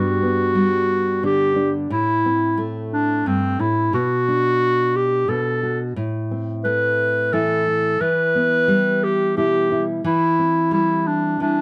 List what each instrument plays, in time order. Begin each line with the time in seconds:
Already playing: nylon-string guitar G2 G3 B3 D4, clarinet F#4
0.22 nylon-string guitar B3
0.55 nylon-string guitar G3
1.23 nylon-string guitar D3 D4, clarinet G4
1.56 nylon-string guitar D4
1.90 nylon-string guitar A2, clarinet E4
2.26 nylon-string guitar C4
2.57 nylon-string guitar A3
2.93 clarinet D4
3.26 nylon-string guitar G2, clarinet C4
3.60 nylon-string guitar A2, clarinet E4
3.93 nylon-string guitar B2, clarinet F#4
4.28 nylon-string guitar D4
4.96 clarinet G4
5.28 nylon-string guitar B2 F#4, clarinet A4
5.63 nylon-string guitar F#4
5.96 nylon-string guitar A2
6.31 nylon-string guitar C4
6.64 nylon-string guitar A3, clarinet B4
7.33 nylon-string guitar E3 E4, clarinet A4
7.67 nylon-string guitar E4
8.01 nylon-string guitar E3, clarinet B4
8.35 nylon-string guitar B3
8.68 nylon-string guitar G3
9.03 clarinet G4
9.37 nylon-string guitar B2 E4, clarinet G4
9.72 nylon-string guitar E4
10.04 nylon-string guitar E3, clarinet E4
10.39 nylon-string guitar C4
10.71 nylon-string guitar G3, clarinet E4
11.07 clarinet D4
11.40 nylon-string guitar E3 E4, clarinet D4